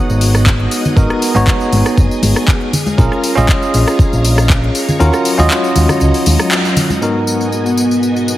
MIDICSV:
0, 0, Header, 1, 6, 480
1, 0, Start_track
1, 0, Tempo, 504202
1, 921, Time_signature, 4, 2, 24, 8
1, 7976, End_track
2, 0, Start_track
2, 0, Title_t, "String machine"
2, 0, Program_c, 0, 50
2, 0, Note_on_c, 0, 68, 77
2, 0, Note_on_c, 0, 75, 69
2, 0, Note_on_c, 0, 78, 72
2, 0, Note_on_c, 0, 87, 80
2, 904, Note_off_c, 0, 78, 0
2, 922, Note_on_c, 0, 80, 69
2, 2567, Note_off_c, 0, 75, 0
2, 2567, Note_off_c, 0, 87, 0
2, 2585, Note_off_c, 0, 80, 0
2, 2604, Note_on_c, 0, 82, 88
2, 2605, Note_on_c, 0, 73, 73
2, 2606, Note_on_c, 0, 77, 73
2, 4725, Note_off_c, 0, 68, 0
2, 4742, Note_off_c, 0, 77, 0
2, 4759, Note_on_c, 0, 75, 72
2, 4761, Note_on_c, 0, 54, 79
2, 6645, Note_off_c, 0, 73, 0
2, 6645, Note_off_c, 0, 82, 0
2, 6661, Note_off_c, 0, 75, 0
2, 6662, Note_off_c, 0, 54, 0
2, 6679, Note_on_c, 0, 66, 75
2, 6679, Note_on_c, 0, 75, 69
2, 6680, Note_on_c, 0, 59, 66
2, 6680, Note_on_c, 0, 80, 81
2, 7976, Note_off_c, 0, 59, 0
2, 7976, Note_off_c, 0, 66, 0
2, 7976, Note_off_c, 0, 75, 0
2, 7976, Note_off_c, 0, 80, 0
2, 7976, End_track
3, 0, Start_track
3, 0, Title_t, "Tine electric piano"
3, 0, Program_c, 1, 4
3, 0, Note_on_c, 1, 59, 88
3, 0, Note_on_c, 1, 63, 80
3, 0, Note_on_c, 1, 66, 81
3, 0, Note_on_c, 1, 73, 95
3, 888, Note_off_c, 1, 59, 0
3, 892, Note_off_c, 1, 63, 0
3, 895, Note_off_c, 1, 66, 0
3, 898, Note_off_c, 1, 73, 0
3, 916, Note_on_c, 1, 59, 77
3, 920, Note_on_c, 1, 63, 73
3, 924, Note_on_c, 1, 66, 69
3, 927, Note_on_c, 1, 70, 87
3, 1256, Note_off_c, 1, 59, 0
3, 1258, Note_off_c, 1, 63, 0
3, 1260, Note_off_c, 1, 66, 0
3, 1261, Note_off_c, 1, 70, 0
3, 1280, Note_on_c, 1, 59, 86
3, 1286, Note_on_c, 1, 63, 80
3, 1292, Note_on_c, 1, 66, 80
3, 1299, Note_on_c, 1, 73, 95
3, 2583, Note_off_c, 1, 59, 0
3, 2586, Note_off_c, 1, 63, 0
3, 2589, Note_off_c, 1, 66, 0
3, 2593, Note_off_c, 1, 73, 0
3, 2836, Note_on_c, 1, 61, 77
3, 2838, Note_on_c, 1, 65, 69
3, 2842, Note_on_c, 1, 68, 69
3, 2845, Note_on_c, 1, 70, 87
3, 3175, Note_off_c, 1, 61, 0
3, 3177, Note_off_c, 1, 65, 0
3, 3179, Note_off_c, 1, 68, 0
3, 3180, Note_off_c, 1, 70, 0
3, 3194, Note_on_c, 1, 61, 92
3, 3201, Note_on_c, 1, 65, 78
3, 3208, Note_on_c, 1, 68, 83
3, 3213, Note_on_c, 1, 75, 98
3, 4726, Note_off_c, 1, 61, 0
3, 4730, Note_off_c, 1, 65, 0
3, 4734, Note_off_c, 1, 68, 0
3, 4736, Note_off_c, 1, 75, 0
3, 4755, Note_on_c, 1, 61, 75
3, 4758, Note_on_c, 1, 65, 72
3, 4762, Note_on_c, 1, 66, 71
3, 4764, Note_on_c, 1, 70, 88
3, 5095, Note_off_c, 1, 61, 0
3, 5097, Note_off_c, 1, 65, 0
3, 5099, Note_off_c, 1, 66, 0
3, 5100, Note_off_c, 1, 70, 0
3, 5118, Note_on_c, 1, 61, 90
3, 5125, Note_on_c, 1, 65, 80
3, 5130, Note_on_c, 1, 66, 83
3, 5137, Note_on_c, 1, 75, 98
3, 6649, Note_off_c, 1, 61, 0
3, 6652, Note_off_c, 1, 65, 0
3, 6655, Note_off_c, 1, 66, 0
3, 6658, Note_off_c, 1, 75, 0
3, 6672, Note_on_c, 1, 44, 66
3, 6676, Note_on_c, 1, 59, 61
3, 6682, Note_on_c, 1, 63, 62
3, 6687, Note_on_c, 1, 66, 62
3, 6691, Note_on_c, 1, 70, 74
3, 7976, Note_off_c, 1, 44, 0
3, 7976, Note_off_c, 1, 59, 0
3, 7976, Note_off_c, 1, 63, 0
3, 7976, Note_off_c, 1, 66, 0
3, 7976, Note_off_c, 1, 70, 0
3, 7976, End_track
4, 0, Start_track
4, 0, Title_t, "Picked electric bass"
4, 0, Program_c, 2, 34
4, 90, Note_on_c, 2, 32, 81
4, 619, Note_off_c, 2, 32, 0
4, 920, Note_on_c, 2, 32, 91
4, 1004, Note_off_c, 2, 32, 0
4, 1288, Note_on_c, 2, 32, 90
4, 1362, Note_off_c, 2, 32, 0
4, 1642, Note_on_c, 2, 32, 96
4, 1725, Note_off_c, 2, 32, 0
4, 1881, Note_on_c, 2, 30, 86
4, 1965, Note_off_c, 2, 30, 0
4, 2121, Note_on_c, 2, 32, 76
4, 2205, Note_off_c, 2, 32, 0
4, 2840, Note_on_c, 2, 34, 96
4, 2924, Note_off_c, 2, 34, 0
4, 3209, Note_on_c, 2, 34, 94
4, 3282, Note_off_c, 2, 34, 0
4, 3562, Note_on_c, 2, 34, 94
4, 3645, Note_off_c, 2, 34, 0
4, 3930, Note_on_c, 2, 34, 84
4, 4460, Note_off_c, 2, 34, 0
4, 4764, Note_on_c, 2, 39, 99
4, 4846, Note_off_c, 2, 39, 0
4, 5129, Note_on_c, 2, 39, 91
4, 5202, Note_off_c, 2, 39, 0
4, 5483, Note_on_c, 2, 39, 93
4, 5565, Note_off_c, 2, 39, 0
4, 5723, Note_on_c, 2, 37, 85
4, 5806, Note_off_c, 2, 37, 0
4, 5963, Note_on_c, 2, 39, 81
4, 6046, Note_off_c, 2, 39, 0
4, 7976, End_track
5, 0, Start_track
5, 0, Title_t, "Muted picked electric bass strokes"
5, 3800, Note_on_c, 9, 29, 40
5, 3895, Note_off_c, 9, 29, 0
5, 7976, End_track
6, 0, Start_track
6, 0, Title_t, "Drums"
6, 91, Note_on_c, 9, 69, 36
6, 92, Note_on_c, 9, 54, 28
6, 186, Note_off_c, 9, 69, 0
6, 187, Note_off_c, 9, 54, 0
6, 201, Note_on_c, 9, 46, 101
6, 203, Note_on_c, 9, 54, 76
6, 296, Note_off_c, 9, 46, 0
6, 298, Note_off_c, 9, 54, 0
6, 328, Note_on_c, 9, 69, 67
6, 330, Note_on_c, 9, 37, 77
6, 332, Note_on_c, 9, 54, 32
6, 424, Note_off_c, 9, 69, 0
6, 425, Note_off_c, 9, 37, 0
6, 427, Note_off_c, 9, 54, 0
6, 438, Note_on_c, 9, 69, 55
6, 440, Note_on_c, 9, 36, 100
6, 443, Note_on_c, 9, 39, 105
6, 443, Note_on_c, 9, 54, 41
6, 534, Note_off_c, 9, 69, 0
6, 535, Note_off_c, 9, 36, 0
6, 538, Note_off_c, 9, 39, 0
6, 539, Note_off_c, 9, 54, 0
6, 564, Note_on_c, 9, 69, 36
6, 659, Note_off_c, 9, 69, 0
6, 680, Note_on_c, 9, 46, 108
6, 681, Note_on_c, 9, 54, 73
6, 775, Note_off_c, 9, 46, 0
6, 777, Note_off_c, 9, 54, 0
6, 810, Note_on_c, 9, 54, 28
6, 811, Note_on_c, 9, 64, 72
6, 812, Note_on_c, 9, 69, 74
6, 906, Note_off_c, 9, 54, 0
6, 906, Note_off_c, 9, 64, 0
6, 907, Note_off_c, 9, 69, 0
6, 920, Note_on_c, 9, 36, 105
6, 924, Note_on_c, 9, 54, 44
6, 925, Note_on_c, 9, 69, 55
6, 1015, Note_off_c, 9, 36, 0
6, 1019, Note_off_c, 9, 54, 0
6, 1020, Note_off_c, 9, 69, 0
6, 1048, Note_on_c, 9, 69, 35
6, 1050, Note_on_c, 9, 37, 65
6, 1144, Note_off_c, 9, 69, 0
6, 1145, Note_off_c, 9, 37, 0
6, 1162, Note_on_c, 9, 46, 93
6, 1164, Note_on_c, 9, 54, 73
6, 1257, Note_off_c, 9, 46, 0
6, 1259, Note_off_c, 9, 54, 0
6, 1281, Note_on_c, 9, 63, 58
6, 1292, Note_on_c, 9, 54, 33
6, 1293, Note_on_c, 9, 69, 80
6, 1376, Note_off_c, 9, 63, 0
6, 1387, Note_off_c, 9, 54, 0
6, 1388, Note_off_c, 9, 69, 0
6, 1400, Note_on_c, 9, 36, 94
6, 1404, Note_on_c, 9, 39, 99
6, 1404, Note_on_c, 9, 54, 39
6, 1406, Note_on_c, 9, 69, 66
6, 1495, Note_off_c, 9, 36, 0
6, 1499, Note_off_c, 9, 39, 0
6, 1499, Note_off_c, 9, 54, 0
6, 1501, Note_off_c, 9, 69, 0
6, 1522, Note_on_c, 9, 69, 39
6, 1533, Note_on_c, 9, 54, 29
6, 1618, Note_off_c, 9, 69, 0
6, 1628, Note_off_c, 9, 54, 0
6, 1642, Note_on_c, 9, 46, 91
6, 1642, Note_on_c, 9, 63, 53
6, 1644, Note_on_c, 9, 54, 72
6, 1737, Note_off_c, 9, 46, 0
6, 1738, Note_off_c, 9, 63, 0
6, 1739, Note_off_c, 9, 54, 0
6, 1763, Note_on_c, 9, 69, 83
6, 1769, Note_on_c, 9, 37, 85
6, 1771, Note_on_c, 9, 54, 32
6, 1858, Note_off_c, 9, 69, 0
6, 1865, Note_off_c, 9, 37, 0
6, 1866, Note_off_c, 9, 54, 0
6, 1880, Note_on_c, 9, 36, 105
6, 1881, Note_on_c, 9, 69, 58
6, 1882, Note_on_c, 9, 54, 43
6, 1975, Note_off_c, 9, 36, 0
6, 1976, Note_off_c, 9, 69, 0
6, 1977, Note_off_c, 9, 54, 0
6, 2011, Note_on_c, 9, 54, 29
6, 2016, Note_on_c, 9, 69, 35
6, 2106, Note_off_c, 9, 54, 0
6, 2111, Note_off_c, 9, 69, 0
6, 2118, Note_on_c, 9, 63, 86
6, 2121, Note_on_c, 9, 46, 103
6, 2123, Note_on_c, 9, 54, 76
6, 2213, Note_off_c, 9, 63, 0
6, 2216, Note_off_c, 9, 46, 0
6, 2218, Note_off_c, 9, 54, 0
6, 2249, Note_on_c, 9, 37, 82
6, 2251, Note_on_c, 9, 54, 32
6, 2253, Note_on_c, 9, 69, 80
6, 2344, Note_off_c, 9, 37, 0
6, 2346, Note_off_c, 9, 54, 0
6, 2348, Note_off_c, 9, 69, 0
6, 2360, Note_on_c, 9, 36, 98
6, 2363, Note_on_c, 9, 39, 109
6, 2363, Note_on_c, 9, 54, 43
6, 2363, Note_on_c, 9, 69, 65
6, 2455, Note_off_c, 9, 36, 0
6, 2458, Note_off_c, 9, 39, 0
6, 2458, Note_off_c, 9, 54, 0
6, 2458, Note_off_c, 9, 69, 0
6, 2481, Note_on_c, 9, 69, 36
6, 2576, Note_off_c, 9, 69, 0
6, 2599, Note_on_c, 9, 64, 82
6, 2603, Note_on_c, 9, 46, 96
6, 2605, Note_on_c, 9, 54, 81
6, 2694, Note_off_c, 9, 64, 0
6, 2698, Note_off_c, 9, 46, 0
6, 2700, Note_off_c, 9, 54, 0
6, 2724, Note_on_c, 9, 69, 75
6, 2727, Note_on_c, 9, 63, 83
6, 2731, Note_on_c, 9, 54, 30
6, 2819, Note_off_c, 9, 69, 0
6, 2822, Note_off_c, 9, 63, 0
6, 2827, Note_off_c, 9, 54, 0
6, 2840, Note_on_c, 9, 36, 104
6, 2842, Note_on_c, 9, 54, 43
6, 2846, Note_on_c, 9, 69, 64
6, 2935, Note_off_c, 9, 36, 0
6, 2938, Note_off_c, 9, 54, 0
6, 2941, Note_off_c, 9, 69, 0
6, 2969, Note_on_c, 9, 37, 63
6, 2977, Note_on_c, 9, 69, 38
6, 3064, Note_off_c, 9, 37, 0
6, 3072, Note_off_c, 9, 69, 0
6, 3080, Note_on_c, 9, 46, 100
6, 3082, Note_on_c, 9, 54, 76
6, 3176, Note_off_c, 9, 46, 0
6, 3177, Note_off_c, 9, 54, 0
6, 3212, Note_on_c, 9, 54, 34
6, 3213, Note_on_c, 9, 63, 61
6, 3219, Note_on_c, 9, 69, 79
6, 3307, Note_off_c, 9, 54, 0
6, 3308, Note_off_c, 9, 63, 0
6, 3312, Note_off_c, 9, 69, 0
6, 3312, Note_on_c, 9, 69, 64
6, 3319, Note_on_c, 9, 36, 94
6, 3323, Note_on_c, 9, 39, 109
6, 3323, Note_on_c, 9, 54, 44
6, 3407, Note_off_c, 9, 69, 0
6, 3414, Note_off_c, 9, 36, 0
6, 3418, Note_off_c, 9, 39, 0
6, 3418, Note_off_c, 9, 54, 0
6, 3448, Note_on_c, 9, 69, 38
6, 3451, Note_on_c, 9, 54, 30
6, 3543, Note_off_c, 9, 69, 0
6, 3546, Note_off_c, 9, 54, 0
6, 3560, Note_on_c, 9, 46, 92
6, 3562, Note_on_c, 9, 54, 76
6, 3655, Note_off_c, 9, 46, 0
6, 3657, Note_off_c, 9, 54, 0
6, 3684, Note_on_c, 9, 69, 86
6, 3690, Note_on_c, 9, 37, 83
6, 3692, Note_on_c, 9, 54, 33
6, 3779, Note_off_c, 9, 69, 0
6, 3785, Note_off_c, 9, 37, 0
6, 3787, Note_off_c, 9, 54, 0
6, 3799, Note_on_c, 9, 36, 107
6, 3804, Note_on_c, 9, 54, 46
6, 3808, Note_on_c, 9, 69, 67
6, 3894, Note_off_c, 9, 36, 0
6, 3899, Note_off_c, 9, 54, 0
6, 3903, Note_off_c, 9, 69, 0
6, 3929, Note_on_c, 9, 69, 37
6, 3932, Note_on_c, 9, 54, 31
6, 4024, Note_off_c, 9, 69, 0
6, 4027, Note_off_c, 9, 54, 0
6, 4042, Note_on_c, 9, 46, 104
6, 4043, Note_on_c, 9, 54, 77
6, 4137, Note_off_c, 9, 46, 0
6, 4139, Note_off_c, 9, 54, 0
6, 4169, Note_on_c, 9, 37, 85
6, 4170, Note_on_c, 9, 69, 74
6, 4171, Note_on_c, 9, 54, 36
6, 4264, Note_off_c, 9, 37, 0
6, 4265, Note_off_c, 9, 69, 0
6, 4266, Note_off_c, 9, 54, 0
6, 4278, Note_on_c, 9, 69, 65
6, 4279, Note_on_c, 9, 36, 97
6, 4283, Note_on_c, 9, 39, 115
6, 4283, Note_on_c, 9, 54, 43
6, 4374, Note_off_c, 9, 36, 0
6, 4374, Note_off_c, 9, 69, 0
6, 4378, Note_off_c, 9, 39, 0
6, 4378, Note_off_c, 9, 54, 0
6, 4412, Note_on_c, 9, 69, 40
6, 4507, Note_off_c, 9, 69, 0
6, 4521, Note_on_c, 9, 46, 100
6, 4523, Note_on_c, 9, 54, 77
6, 4616, Note_off_c, 9, 46, 0
6, 4618, Note_off_c, 9, 54, 0
6, 4651, Note_on_c, 9, 54, 33
6, 4651, Note_on_c, 9, 64, 82
6, 4651, Note_on_c, 9, 69, 81
6, 4746, Note_off_c, 9, 54, 0
6, 4746, Note_off_c, 9, 64, 0
6, 4746, Note_off_c, 9, 69, 0
6, 4763, Note_on_c, 9, 54, 47
6, 4764, Note_on_c, 9, 69, 72
6, 4858, Note_off_c, 9, 54, 0
6, 4859, Note_off_c, 9, 69, 0
6, 4883, Note_on_c, 9, 69, 44
6, 4889, Note_on_c, 9, 37, 66
6, 4891, Note_on_c, 9, 54, 32
6, 4978, Note_off_c, 9, 69, 0
6, 4984, Note_off_c, 9, 37, 0
6, 4986, Note_off_c, 9, 54, 0
6, 5000, Note_on_c, 9, 46, 98
6, 5001, Note_on_c, 9, 54, 79
6, 5095, Note_off_c, 9, 46, 0
6, 5097, Note_off_c, 9, 54, 0
6, 5128, Note_on_c, 9, 63, 64
6, 5130, Note_on_c, 9, 54, 34
6, 5134, Note_on_c, 9, 69, 76
6, 5223, Note_off_c, 9, 63, 0
6, 5225, Note_off_c, 9, 54, 0
6, 5229, Note_off_c, 9, 69, 0
6, 5237, Note_on_c, 9, 69, 71
6, 5241, Note_on_c, 9, 39, 113
6, 5242, Note_on_c, 9, 54, 45
6, 5332, Note_off_c, 9, 69, 0
6, 5336, Note_off_c, 9, 39, 0
6, 5337, Note_off_c, 9, 54, 0
6, 5370, Note_on_c, 9, 54, 30
6, 5375, Note_on_c, 9, 69, 37
6, 5465, Note_off_c, 9, 54, 0
6, 5471, Note_off_c, 9, 69, 0
6, 5477, Note_on_c, 9, 63, 59
6, 5480, Note_on_c, 9, 46, 93
6, 5482, Note_on_c, 9, 54, 80
6, 5572, Note_off_c, 9, 63, 0
6, 5575, Note_off_c, 9, 46, 0
6, 5577, Note_off_c, 9, 54, 0
6, 5605, Note_on_c, 9, 64, 81
6, 5609, Note_on_c, 9, 37, 82
6, 5610, Note_on_c, 9, 54, 36
6, 5613, Note_on_c, 9, 69, 81
6, 5700, Note_off_c, 9, 64, 0
6, 5704, Note_off_c, 9, 37, 0
6, 5706, Note_off_c, 9, 54, 0
6, 5708, Note_off_c, 9, 69, 0
6, 5713, Note_on_c, 9, 69, 67
6, 5722, Note_on_c, 9, 54, 47
6, 5808, Note_off_c, 9, 69, 0
6, 5817, Note_off_c, 9, 54, 0
6, 5848, Note_on_c, 9, 46, 56
6, 5848, Note_on_c, 9, 69, 42
6, 5850, Note_on_c, 9, 54, 32
6, 5943, Note_off_c, 9, 46, 0
6, 5943, Note_off_c, 9, 69, 0
6, 5945, Note_off_c, 9, 54, 0
6, 5961, Note_on_c, 9, 46, 99
6, 5962, Note_on_c, 9, 54, 84
6, 5965, Note_on_c, 9, 63, 75
6, 6056, Note_off_c, 9, 46, 0
6, 6058, Note_off_c, 9, 54, 0
6, 6060, Note_off_c, 9, 63, 0
6, 6080, Note_on_c, 9, 69, 81
6, 6088, Note_on_c, 9, 37, 82
6, 6090, Note_on_c, 9, 54, 36
6, 6175, Note_off_c, 9, 69, 0
6, 6183, Note_off_c, 9, 37, 0
6, 6185, Note_off_c, 9, 54, 0
6, 6196, Note_on_c, 9, 69, 69
6, 6202, Note_on_c, 9, 39, 114
6, 6202, Note_on_c, 9, 54, 46
6, 6291, Note_off_c, 9, 69, 0
6, 6297, Note_off_c, 9, 39, 0
6, 6297, Note_off_c, 9, 54, 0
6, 6330, Note_on_c, 9, 69, 38
6, 6331, Note_on_c, 9, 54, 33
6, 6425, Note_off_c, 9, 69, 0
6, 6426, Note_off_c, 9, 54, 0
6, 6438, Note_on_c, 9, 64, 85
6, 6442, Note_on_c, 9, 46, 98
6, 6444, Note_on_c, 9, 54, 84
6, 6533, Note_off_c, 9, 64, 0
6, 6537, Note_off_c, 9, 46, 0
6, 6539, Note_off_c, 9, 54, 0
6, 6568, Note_on_c, 9, 63, 90
6, 6570, Note_on_c, 9, 69, 83
6, 6571, Note_on_c, 9, 54, 34
6, 6663, Note_off_c, 9, 63, 0
6, 6665, Note_off_c, 9, 69, 0
6, 6666, Note_off_c, 9, 54, 0
6, 6684, Note_on_c, 9, 54, 42
6, 6780, Note_off_c, 9, 54, 0
6, 6923, Note_on_c, 9, 54, 70
6, 7019, Note_off_c, 9, 54, 0
6, 7051, Note_on_c, 9, 54, 31
6, 7146, Note_off_c, 9, 54, 0
6, 7163, Note_on_c, 9, 54, 38
6, 7258, Note_off_c, 9, 54, 0
6, 7292, Note_on_c, 9, 54, 28
6, 7387, Note_off_c, 9, 54, 0
6, 7402, Note_on_c, 9, 54, 69
6, 7497, Note_off_c, 9, 54, 0
6, 7532, Note_on_c, 9, 54, 33
6, 7627, Note_off_c, 9, 54, 0
6, 7643, Note_on_c, 9, 54, 41
6, 7738, Note_off_c, 9, 54, 0
6, 7772, Note_on_c, 9, 54, 28
6, 7867, Note_off_c, 9, 54, 0
6, 7883, Note_on_c, 9, 54, 70
6, 7976, Note_off_c, 9, 54, 0
6, 7976, End_track
0, 0, End_of_file